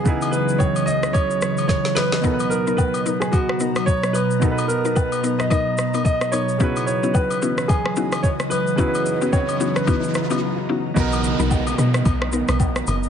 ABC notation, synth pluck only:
X:1
M:4/4
L:1/16
Q:"Swing 16ths" 1/4=110
K:B
V:1 name="Synth pluck"
z16 | [B,DA] z2 [B,DA] z2 [B,DA] z3 [B,DA] z4 z | [B,DA] z2 [B,DA] z2 [B,DA] z [B,DA]3 [B,DA] z2 [B,DA] z | [B,CDEF] z2 [B,CDEF] z2 [B,CDEF] z3 [B,CDEF] z4 z |
[B,CDEF] z2 [B,CDEF] z2 [B,CDEF] z [B,CDEF]3 [B,CDEF] z2 [B,CDEF] z | [B,DA] z2 [B,DA] z2 [B,DA] z3 [B,DA] z4 z |]